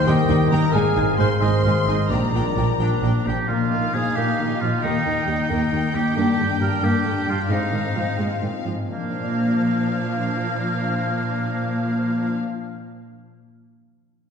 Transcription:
Already playing: harp D#3 A#4
0.06 double bass section D#2, cello section D#3, trombone section D#3 G3, viola section A#3 D#4, french horn section A#3 A#4, trumpet G4, harp G4, oboe D#5, violin section G5
0.28 double bass section D#2, cello section D#3, viola section A#3 D#4, harp D#4, violin section G5
0.51 double bass section D#2, cello section D#3, viola section A#3 D#4, harp G4, trumpet A#4, violin section G5 A#5
0.73 double bass section G#1, cello section G#2, harp G#2, trombone section D#3 G#3, viola section G#3 D#4, french horn section C4 G#4, trumpet G#4, oboe F5, violin section G#5
0.95 double bass section G#1, cello section G#2, viola section G#3 D#4, harp D#4, violin section G#5
1.18 double bass section G#1, cello section G#2, viola section G#3 D#4, harp G#4, trumpet C5, violin section G#5 C6
1.41 double bass section G#1, cello section G#2, trombone section D#3 G#3, viola section G#3 D#4, french horn section C4 G#4, harp D#4, trumpet C5, oboe D#5, violin section G#5 C6
1.64 double bass section G#1, cello section G#2, viola section G#3 D#4, harp G#3, oboe F5, violin section G#5
1.87 double bass section G#1, cello section G#2, viola section G#3 D#4, harp D#4, oboe D#5, violin section G#5
2.09 double bass section A#1, cello section A#2, harp A#2, trombone section F3 G3, viola section F3 D4, french horn section D4 A#4, trumpet A#4, oboe D5, violin section G5 A#5
2.33 double bass section A#1, cello section A#2, viola section F3 D4, harp D4, violin section G5
2.56 double bass section A#1, cello section A#2, viola section F3 D4, harp G4, violin section G5
2.79 double bass section A#1, cello section A#2, viola section F3 D4, oboe D4, harp D4, violin section G5
3.02 double bass section A#1, cello section A#2, viola section F3 D4, harp F3, violin section G5
3.24 double bass section A#1, cello section A#2, viola section F3 D4, harp D4, oboe G4
3.29 violin section G5
3.48 cello section A#2, harp A#2, viola section A#3, violin section D#4 F5, oboe F4
3.70 cello section A#2, viola section D#3, harp D#4
3.94 cello section A#2, viola section F3, harp A#3, oboe G#4
4.16 cello section A#2, viola section A#3, harp F4, oboe G4
4.39 cello section A#2, viola section D#3, harp D#4
4.61 cello section A#2, viola section F3, harp A#3, oboe F4
4.83 cello section D#2, harp D#3, viola section A#3, oboe D#4, violin section G5
5.06 cello section D#2, viola section D#3, harp G4
5.27 cello section D#2, viola section G3, harp D#4
5.49 cello section D#2, viola section A#3, oboe D#4, harp A#4
5.71 cello section D#2, viola section D#3, harp G4
5.93 cello section D#2, viola section G3, harp D#4, oboe G4
6.15 cello section G2, harp G2, viola section A#3, violin section D4, oboe G4
6.38 cello section G2, viola section D3, harp D4
6.60 cello section G2, viola section G3, harp A#3, oboe A#4
6.82 cello section G2, viola section A#3, harp G4, oboe G4
7.05 cello section G2, viola section D3, harp D4
7.27 cello section G2, viola section G3, harp A#3, oboe F4
7.49 cello section G#2, harp G#2, viola section G#3, violin section C4 F5, oboe D#4
7.72 cello section G#2, viola section D#3, harp C4
7.95 cello section G#2, viola section F3, harp G#3
8.18 cello section G#2, viola section G#3, harp F4
8.41 cello section G#2, viola section D#3, harp C4
8.64 cello section G#2, viola section F3, harp G#3
8.87 cello section A#2, harp A#2, viola section F3, oboe A#3, violin section D4 F5
8.96 harp F3
9.03 harp A#3
9.10 harp D4
9.17 harp F4
9.24 harp D5

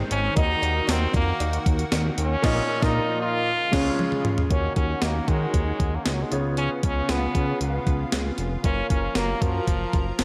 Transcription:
Already playing: grand piano G#2 C4 D#4 G#4 D#5, analog synth pad D#3 G#3 C4
0.11 analog synth bass G#1, french horn C#4, closed hi-hat
0.36 analog synth bass D#2, grand piano D#3 A#3 D#4 F#4 D#5, analog synth pad A#3 F#4, french horn D#4, kick, closed hi-hat, cowbell
0.62 analog synth bass D#2, closed hi-hat, cowbell
0.87 analog synth bass D#2, french horn C4, snare, closed hi-hat, tambourine, cowbell
1.14 analog synth bass F2, french horn A#3, kick, closed hi-hat, cowbell
1.40 analog synth bass D#2, closed hi-hat, cowbell
1.53 closed hi-hat
1.66 analog synth bass D#2, kick, closed hi-hat
1.79 closed hi-hat
1.92 analog synth bass D#2, snare, closed hi-hat, tambourine, cowbell
2.18 analog synth bass D#2, french horn C#4, closed hi-hat
2.42 analog synth bass A#1, grand piano A#2 A#3 D#4 F4 D#5, analog synth pad F3 D#4, analog polysynth D#4 F4 A#4, kick, snare, crash
2.81 analog synth bass A#1, grand piano A#2 A#3 D#4 F4 D#5, analog polysynth D#4 F4 A#4, french horn D#4, kick, snare
3.22 french horn F4
3.47 analog synth pad C#3 G#3 F4
3.72 analog synth bass C#2, grand piano C#3 G#3 C#4 F4 C#5, kick, snare, crash
3.99 high tom
4.12 mid tom
4.25 mid tom
4.38 floor tom
4.49 analog synth bass D#2, grand piano D#3 A#3 D#4 F#4 C#5, analog synth pad D#3 C#4 F#4, french horn C#4, kick, closed hi-hat
4.76 analog synth bass D#2, french horn C#4, kick, closed hi-hat
5.02 analog synth bass D#2, french horn A#3, analog polysynth D#4 F#4 A#4, snare, closed hi-hat
5.28 analog synth bass D#3, french horn G#3, analog polysynth D#4 F#4 A#4, kick, closed hi-hat
5.54 analog synth bass D#2, kick, closed hi-hat
5.80 analog synth bass D#2, kick, closed hi-hat
5.95 french horn A#3
6.05 analog synth bass C#2, french horn G#3, snare, closed hi-hat
6.14 french horn F#3
6.22 french horn G#3
6.30 analog synth bass C#2, analog synth pad C#3 B3 F4, grand piano C#3 B3 F4 G#4 C#5, closed hi-hat
6.57 french horn C#4, closed hi-hat
6.83 analog synth bass C#2, french horn C#4, kick, closed hi-hat
7.09 analog synth bass C#2, french horn B3, analog polysynth C#4 F4 G#4, snare, closed hi-hat
7.35 analog synth bass C#3, analog polysynth C#4 F4 G#4, kick, closed hi-hat
7.61 analog synth bass C#2, french horn B3, closed hi-hat
7.87 analog synth bass C#2, kick, closed hi-hat
8.12 analog synth bass C#2, snare, closed hi-hat
8.38 analog synth bass F1, closed hi-hat
8.63 analog synth bass F#1, analog synth pad F3 A#4, grand piano A#3 F4 A#4 C#5, french horn C#4, kick, closed hi-hat
8.90 analog synth bass F#1, french horn C#4, kick, closed hi-hat
9.15 analog synth bass F#1, french horn A#3, analog polysynth A#3 F#4 A#4, snare, closed hi-hat
9.42 analog synth bass F#2, french horn F3, analog polysynth A#3 F#4 A#4, kick, closed hi-hat
9.67 analog synth bass F#1, kick, closed hi-hat
9.93 analog synth bass F#1, kick, closed hi-hat
10.19 analog synth bass F1, snare, closed hi-hat

